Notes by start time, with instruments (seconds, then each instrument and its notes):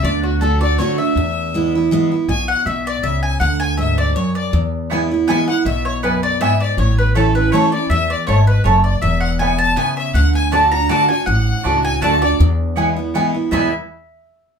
0.03 upright bass D2, steel-string acoustic guitar D3, fiddle D5, mandolin D5
0.23 mandolin F#4, fiddle F#4
0.41 steel-string acoustic guitar D3 A3 D4 F#4, fiddle A4, mandolin A4
0.61 steel-string acoustic guitar D4 F#4, mandolin D5, fiddle D5
0.78 steel-string acoustic guitar D3 A3 D4 F#4, mandolin C#5, fiddle C#5
0.98 steel-string acoustic guitar D4 F#4, mandolin E5, fiddle E5
1.16 upright bass E2, steel-string acoustic guitar E2
1.54 steel-string acoustic guitar E3 G#3 B3 E4
1.75 steel-string acoustic guitar B3 E4
1.91 steel-string acoustic guitar E3 G#3 B3 E4
2.12 steel-string acoustic guitar B3 E4
2.28 upright bass B1, steel-string acoustic guitar B2, mandolin G#5, fiddle G#5
2.48 mandolin F#5, fiddle F#5
2.66 upright bass B1, steel-string acoustic guitar B2, mandolin E5, fiddle E5
2.87 mandolin D5, fiddle D5
3.03 upright bass C#2, steel-string acoustic guitar C#3, mandolin E5, fiddle E5
3.23 mandolin G#5, fiddle G#5
3.40 upright bass D2, steel-string acoustic guitar D3, mandolin F#5, fiddle F#5
3.60 mandolin G#5, fiddle G#5
3.77 steel-string acoustic guitar G#2, mandolin E5, fiddle E5
3.98 mandolin D5, fiddle D5
4.15 steel-string acoustic guitar F#2, fiddle C#5, mandolin C#5
4.35 mandolin D5, fiddle D5
4.53 upright bass E2, steel-string acoustic guitar E2
4.90 steel-string acoustic guitar E3 G#3 B3 E4, mandolin B3 E4 B4 G#5
5.11 steel-string acoustic guitar B3 E4
5.27 steel-string acoustic guitar E3 G#3 B3 E4, mandolin B3 E4 B4 G#5, fiddle G#5
5.48 steel-string acoustic guitar E4, mandolin F#5, fiddle F#5
5.52 steel-string acoustic guitar B3
5.65 upright bass B1, steel-string acoustic guitar B2, mandolin E5, fiddle E5
5.85 mandolin C#5, fiddle C#5
6.03 steel-string acoustic guitar F#2, mandolin B3 E4 B4 G#5, fiddle B4
6.23 mandolin D5, fiddle D5
6.41 steel-string acoustic guitar G#2, mandolin B3 E4 B4 E5 G#5, fiddle E5
6.61 mandolin D5, fiddle D5
6.77 upright bass A1, steel-string acoustic guitar A2, fiddle C#5, mandolin C#5
6.98 fiddle B4, mandolin B4
7.15 steel-string acoustic guitar E3 A3 C#4 E4, mandolin A3 E4 A4 C#5 A5, fiddle A4
7.35 steel-string acoustic guitar C#4 E4, mandolin B4, fiddle B4
7.52 steel-string acoustic guitar E3 A3 C#4 E4, mandolin A3 E4 C#5 A5, fiddle C#5
7.72 steel-string acoustic guitar C#4 E4, mandolin D5, fiddle D5
7.90 upright bass E2, steel-string acoustic guitar E2, mandolin E5, fiddle E5
8.10 mandolin D5, fiddle D5
8.27 upright bass G#1, steel-string acoustic guitar G#2, mandolin A3 E4 C#5 A5, fiddle C#5
8.47 mandolin B4, fiddle B4
8.64 upright bass F#1, steel-string acoustic guitar F#2, mandolin A3 E4 C#5 A5, fiddle C#5
8.84 mandolin D5, fiddle D5
9.02 upright bass E1, steel-string acoustic guitar E2, mandolin E5, fiddle E5
9.20 mandolin F#5, fiddle F#5
9.39 steel-string acoustic guitar B2, mandolin B3 E4 B4 G#5, fiddle G#5
9.58 mandolin A5, fiddle A5
9.77 steel-string acoustic guitar C#3, mandolin B3 E4 B4 G#5, fiddle G#5
9.97 mandolin E5, fiddle E5
10.14 upright bass D2, steel-string acoustic guitar D3, mandolin F#5, fiddle F#5
10.35 fiddle G#5, mandolin G#5
10.52 steel-string acoustic guitar D3 A3 D4 F#4, mandolin A3 F#4 D5 A5, fiddle A5
10.71 steel-string acoustic guitar D4 F#4, mandolin A#5, fiddle A#5
10.89 steel-string acoustic guitar D3 A3 D4 F#4, mandolin A3 F#4 D5 A5, fiddle A5
11.09 steel-string acoustic guitar D4 F#4, mandolin G#5, fiddle G#5
11.26 upright bass A1, steel-string acoustic guitar A2, mandolin F#5, fiddle F#5
11.63 upright bass C#2, mandolin A3 F#4 D5 A5, steel-string acoustic guitar A3 D4 F#4
11.84 fiddle G#5, mandolin G#5
12.02 upright bass D2, steel-string acoustic guitar D3 A3 D4 F#4, mandolin A3 F#4 D5 A5, fiddle A5
12.22 steel-string acoustic guitar D4 F#4, mandolin D5, fiddle D5
12.40 upright bass E2, steel-string acoustic guitar E2
12.76 steel-string acoustic guitar E3 G#3 B3 E4, mandolin B3 E4 B4 G#5
12.97 steel-string acoustic guitar B3 E4
13.14 steel-string acoustic guitar E3 G#3 B3 E4, mandolin B3 E4 B4 G#5
13.34 steel-string acoustic guitar B3 E4
13.51 steel-string acoustic guitar E2 B2 E3 G#3 B3 E4, upright bass E2, mandolin B3 E4 B4 E5 G#5, fiddle E5